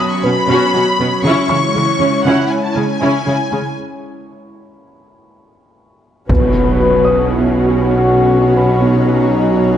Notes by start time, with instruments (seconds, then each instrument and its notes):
Already playing: analog synth pad F#3 C#4 F#4 C#5, grand piano G#6
0.00 violin section B5, grand piano D#6
0.11 violin section C#6
0.24 cello section B2, viola section B3 C#4, synth pluck B4, violin section B5
0.49 cello section B2, synth pluck B3, viola section C#4 F#4
0.74 cello section B2, viola section C#4 F#4, synth pluck C#5
0.99 cello section B2, viola section B3 C#4, synth pluck B4
1.24 cello section C#3, synth pluck C#3, analog synth pad G#3 C#4 E4 C#5, viola section C#4 E4, violin section C#6
1.49 cello section C#3, synth pluck E3, viola section C#4 E4, grand piano C#6
1.75 cello section C#3, synth pluck E3, viola section G#3 C#4
2.00 cello section C#3, synth pluck C#4, viola section C#4 E4
2.25 synth pluck C#3, cello section C#3, viola section C#4 E4, violin section F#5, grand piano B5
2.50 violin section G#5
2.63 violin section A5
2.75 cello section C#3, viola section G#3 C#4, synth pluck G#3, violin section G#5
3.01 synth pluck C#3, cello section C#3, viola section C#4 E4
3.26 cello section C#3, synth pluck C#4, viola section C#4 E4
3.51 cello section C#3, synth pluck G#3, viola section G#3 C#4
6.29 double bass section B1, cello section B2, analog synth pad F#3 C#4 F#4 C#5, synth pluck B3, viola section C#4 F#4, french horn section B4, taiko, impact
6.54 synth pluck F#4
6.80 synth pluck F#4
7.05 synth pluck C#5, grand piano D#6
7.30 synth pluck B3, french horn section E4
7.57 french horn section F#4
7.70 french horn section G#4
7.81 french horn section F#4, synth pluck B4
8.06 synth pluck B3
8.31 synth pluck C#5
8.56 synth pluck B4, grand piano B5
8.81 synth pluck B3, french horn section D#4
9.06 synth pluck F#4
9.31 synth pluck F#4
9.57 synth pluck C#5